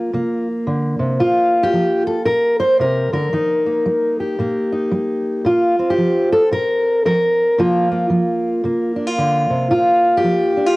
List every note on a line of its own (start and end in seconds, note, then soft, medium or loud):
0.00 0.14 A#3 soft
0.00 0.47 F4 medium
0.13 0.63 C3 medium
0.13 3.64 A#3 soft
0.67 0.99 D3 medium
0.99 1.20 C3 medium
1.20 1.69 A#2 medium
1.20 2.16 F4 medium
1.63 2.06 G4 medium
1.73 2.22 F3 medium
2.07 2.25 A4 medium
2.25 2.75 A#2 medium
2.25 2.59 A#4 medium
2.60 2.80 C5 medium
2.80 3.12 C3 medium
2.80 3.12 A#4 medium
3.13 3.32 D3 medium
3.13 4.19 A#4 medium
3.33 3.82 D#3 medium
3.33 4.71 D#4 medium
3.66 4.39 A#3 soft
3.86 4.35 G3 medium
4.20 5.46 G4 soft
4.39 4.88 A#2 medium
4.39 5.79 A#3 soft
4.72 5.43 D#4 soft
4.91 5.41 G3 medium
5.45 5.94 A#2 medium
5.45 6.42 F4 medium
5.79 7.59 C4 soft
5.90 6.32 G4 medium
5.98 6.47 F3 medium
6.32 6.52 A4 medium
6.51 7.00 A#2 medium
6.51 7.04 A#4 loud
7.05 7.54 F3 medium
7.05 7.58 A#4 medium
7.58 8.07 C3 medium
7.58 8.09 F3 medium
7.58 7.91 A#3 medium
7.58 8.96 F4 medium
7.92 8.65 A#3 soft
8.10 8.59 F3 medium
8.64 9.13 C3 medium
8.64 10.76 A#3 soft
8.96 9.07 D4 soft
9.07 9.70 F4 soft
9.18 9.50 D3 medium
9.50 9.70 C3 medium
9.70 10.19 A#2 medium
9.70 10.56 F4 medium
10.17 10.76 G4 medium
10.24 10.73 F3 medium
10.57 10.66 D4 soft
10.66 10.76 F4 soft